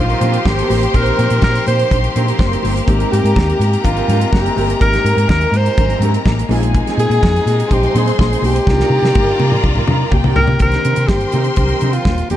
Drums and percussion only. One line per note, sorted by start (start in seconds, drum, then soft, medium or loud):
0.10 closed hi-hat soft
0.21 closed hi-hat medium
0.21 low conga medium
0.33 closed hi-hat medium
0.46 kick loud
0.46 snare loud
0.46 high conga medium
0.59 closed hi-hat medium
0.70 open hi-hat medium
0.70 high conga medium
0.83 closed hi-hat medium
0.94 kick loud
0.94 closed hi-hat medium
0.94 muted conga medium
1.06 closed hi-hat soft
1.19 closed hi-hat medium
1.30 closed hi-hat medium
1.42 kick loud
1.42 snare loud
1.42 high conga medium
1.55 closed hi-hat soft
1.67 closed hi-hat medium
1.67 muted conga medium
1.79 closed hi-hat medium
1.91 kick loud
1.91 closed hi-hat medium
1.91 low conga medium
2.04 closed hi-hat soft
2.16 closed hi-hat medium
2.16 low conga medium
2.28 closed hi-hat soft
2.39 kick loud
2.39 snare loud
2.39 high conga medium
2.53 closed hi-hat medium
2.63 open hi-hat medium
2.63 high conga medium
2.77 closed hi-hat medium
2.88 kick loud
2.88 closed hi-hat medium
2.88 muted conga medium
3.00 closed hi-hat soft
3.13 closed hi-hat medium
3.26 closed hi-hat soft
3.36 kick loud
3.36 snare loud
3.36 high conga medium
3.50 closed hi-hat medium
3.61 closed hi-hat medium
3.61 muted conga medium
3.73 closed hi-hat soft
3.84 kick loud
3.84 closed hi-hat medium
3.84 low conga medium
3.97 closed hi-hat soft
4.09 closed hi-hat medium
4.09 low conga medium
4.21 closed hi-hat medium
4.32 kick loud
4.32 snare loud
4.32 high conga medium
4.46 closed hi-hat medium
4.56 open hi-hat medium
4.56 high conga medium
4.70 closed hi-hat medium
4.81 kick loud
4.81 closed hi-hat medium
4.81 muted conga medium
4.93 snare soft
4.93 closed hi-hat soft
5.06 closed hi-hat medium
5.18 closed hi-hat medium
5.29 kick loud
5.29 snare loud
5.29 high conga medium
5.41 closed hi-hat medium
5.54 closed hi-hat medium
5.54 muted conga medium
5.66 closed hi-hat soft
5.78 kick loud
5.78 closed hi-hat medium
5.78 muted conga soft
5.78 low conga medium
5.90 closed hi-hat soft
6.02 closed hi-hat medium
6.02 low conga medium
6.14 closed hi-hat soft
6.25 kick loud
6.25 snare loud
6.25 high conga medium
6.39 closed hi-hat medium
6.49 open hi-hat medium
6.49 high conga medium
6.63 closed hi-hat soft
6.75 kick loud
6.75 closed hi-hat medium
6.75 muted conga medium
6.87 snare soft
6.87 closed hi-hat soft
6.99 closed hi-hat medium
7.11 closed hi-hat soft
7.23 kick loud
7.23 snare loud
7.23 high conga medium
7.36 closed hi-hat soft
7.47 closed hi-hat medium
7.47 muted conga medium
7.60 closed hi-hat medium
7.71 kick loud
7.71 closed hi-hat medium
7.71 muted conga soft
7.71 low conga medium
7.83 closed hi-hat soft
7.96 closed hi-hat medium
7.96 low conga medium
8.07 closed hi-hat medium
8.19 kick loud
8.19 snare loud
8.19 high conga medium
8.33 closed hi-hat medium
8.42 open hi-hat medium
8.42 high conga medium
8.56 closed hi-hat medium
8.67 kick loud
8.67 snare medium
8.67 muted conga medium
8.80 snare medium
9.05 snare medium
9.15 kick loud
9.15 high tom medium
9.15 high conga medium
9.40 high tom medium
9.40 muted conga medium
9.52 mid tom medium
9.64 kick loud
9.64 low conga medium
9.75 mid tom medium
9.88 mid tom loud
9.88 low conga medium
10.12 kick loud
10.12 mid tom loud
10.12 high conga medium
10.24 floor tom loud
10.36 floor tom loud
10.36 high conga medium
10.47 floor tom loud
10.59 kick loud
10.59 closed hi-hat medium
10.59 muted conga medium
10.72 snare soft
10.72 closed hi-hat soft
10.85 closed hi-hat medium
10.96 closed hi-hat medium
11.09 kick loud
11.09 snare loud
11.09 high conga medium
11.21 closed hi-hat soft
11.32 closed hi-hat medium
11.32 muted conga medium
11.44 closed hi-hat soft
11.56 kick loud
11.56 closed hi-hat medium
11.56 muted conga soft
11.56 low conga medium
11.69 closed hi-hat soft
11.81 closed hi-hat medium
11.81 low conga medium
11.93 closed hi-hat soft
12.05 kick loud
12.05 snare loud
12.05 high conga medium
12.18 closed hi-hat medium
12.30 closed hi-hat medium
12.30 high conga medium